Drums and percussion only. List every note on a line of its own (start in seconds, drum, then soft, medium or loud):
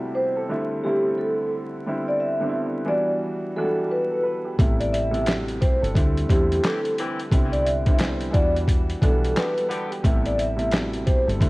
4.59 kick loud
4.59 closed hi-hat loud
4.81 closed hi-hat medium
4.94 closed hi-hat medium
5.14 closed hi-hat soft
5.26 snare loud
5.26 clap loud
5.26 closed hi-hat loud
5.48 closed hi-hat medium
5.62 kick medium
5.62 closed hi-hat medium
5.84 closed hi-hat medium
5.95 kick medium
5.95 closed hi-hat loud
6.17 closed hi-hat medium
6.29 kick loud
6.29 closed hi-hat medium
6.52 closed hi-hat medium
6.64 snare loud
6.64 clap loud
6.64 closed hi-hat loud
6.85 closed hi-hat medium
6.98 closed hi-hat medium
7.20 closed hi-hat medium
7.31 kick loud
7.31 closed hi-hat loud
7.53 closed hi-hat medium
7.66 closed hi-hat medium
7.86 kick loud
7.86 closed hi-hat medium
7.99 snare loud
7.99 clap loud
7.99 closed hi-hat loud
8.21 closed hi-hat medium
8.34 kick loud
8.34 closed hi-hat medium
8.57 closed hi-hat medium
8.68 kick medium
8.68 closed hi-hat loud
8.90 closed hi-hat medium
9.02 kick medium
9.02 closed hi-hat medium
9.24 closed hi-hat medium
9.36 snare loud
9.36 clap loud
9.36 closed hi-hat loud
9.58 closed hi-hat medium
9.71 closed hi-hat medium
9.92 closed hi-hat medium
10.04 kick loud
10.04 closed hi-hat loud
10.26 closed hi-hat medium
10.39 closed hi-hat medium
10.59 closed hi-hat soft
10.71 snare loud
10.71 clap loud
10.71 closed hi-hat loud
10.93 closed hi-hat medium
11.07 kick loud
11.07 closed hi-hat medium
11.29 closed hi-hat medium
11.41 kick loud
11.41 closed hi-hat loud